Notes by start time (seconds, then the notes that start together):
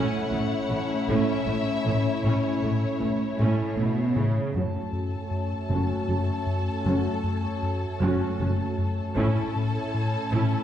Already playing: A2 A3 C#4 E4 C#5 F#5
0.32 A1 A2 A3
0.70 A1 A2 E3 A3
1.08 A1 A2 A3 C#4 E5
1.47 A1 A2 A3
1.85 A1 A2 E3 A3
2.23 A1 A2 A3 C#4 C#5
2.62 A1 A2 A3
3.00 A1 A2 E3 A3
3.39 A1 A2 A3 C#4
3.77 A1 B2 A3
4.15 A1 A2 C#3 E3 A3
4.54 F#1 F#2 A3 C#4 F#4 A4 C#5 A5
4.93 F#2
5.31 F#2
5.69 F#1 F#2 C#4 F#4
6.08 F#1 F#2 C#4 F#4
6.46 F#2
6.85 F#1 F#2 C#4 F#4
7.24 F#2
7.63 F#2
8.01 F#1 F#2 C#4 F#4
8.39 F#1 F#2 C#4 F#4
8.78 F#2
9.16 A1 A2 A3 C#4 E4 A4 C#5 A5
9.56 A2
9.94 A2
10.31 A1 A2 C#4 E4